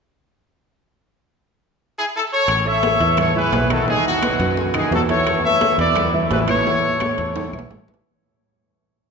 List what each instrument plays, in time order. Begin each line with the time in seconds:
1.98 trumpet section E4 G#4
2.15 trumpet section E4 A4
2.33 trumpet section A4 C#5
2.48 fingered electric bass A1, high bongo, high conga, high timbale, claves
2.65 grand piano A3 A4 C#5, trumpet section C#5 E5, high conga
2.83 high bongo, high conga, high timbale, low timbale
3.00 fingered electric bass E2, grand piano E3 E4 E5, high conga, high timbale
3.17 trumpet section A4 C#5, high bongo, high conga, low conga, high timbale, claves
3.35 grand piano E3 E4 E5, trumpet section G#4 B4, high conga, low conga
3.52 fingered electric bass B1, high bongo, low bongo, high conga, high timbale, low timbale
3.70 grand piano D#3 D#4 D#5, trumpet section F#4 A4, high conga, high timbale, claves
3.87 grand piano D#3 D#4 D#5, trumpet section D#4 G#4, high bongo, high conga
4.06 trumpet section D#4 F#4, high conga
4.22 grand piano F#3 F#4 B4, high bongo, high conga, high timbale, low timbale, claves
4.39 fingered electric bass F#2, grand piano F#3 F#4 B4, high bongo, high conga, high timbale
4.57 high bongo, high conga
4.74 grand piano D#3 D#4 D#5, trumpet section E4 G#4, high bongo, high conga, high timbale, claves
4.91 fingered electric bass E2, grand piano F#3 F#4 B4, trumpet section F#4 A4, high bongo, low bongo, high conga, low timbale
5.09 grand piano E3 E4 E5, trumpet section A4 C#5, high bongo, high conga, high timbale
5.27 high bongo, high timbale, claves
5.44 grand piano A3 A4 B4, trumpet section C#5 E5, high conga
5.61 high bongo, high conga, high timbale, low timbale
5.78 fingered electric bass E2, grand piano E3 E4 E5, trumpet section B4 D5, high conga, high timbale
5.96 high bongo, high conga, low conga, high timbale, claves
6.13 grand piano E3 E4 E5, high conga, low conga
6.31 fingered electric bass A1, trumpet section G#4 B4, high bongo, low bongo, high conga, high timbale, low timbale
6.48 grand piano E3 E4 E5, trumpet section A4 C#5, high conga, high timbale, claves
6.66 grand piano E3 E4 E5, high bongo, high conga
7.00 grand piano A3 A4 C#5, high bongo, high conga, high timbale, low timbale, claves
7.18 fingered electric bass E2, grand piano A3 A4 C#5, high bongo, high timbale
7.36 high bongo, low conga, high timbale
7.53 fingered electric bass B1, grand piano E3 E4 E5, high bongo, low conga, claves
7.59 low timbale
7.70 fingered electric bass A1, grand piano A3 A4 C#5, high bongo, low bongo, low conga, low timbale
7.88 grand piano E3 E4 E5, high bongo, low conga
7.94 low timbale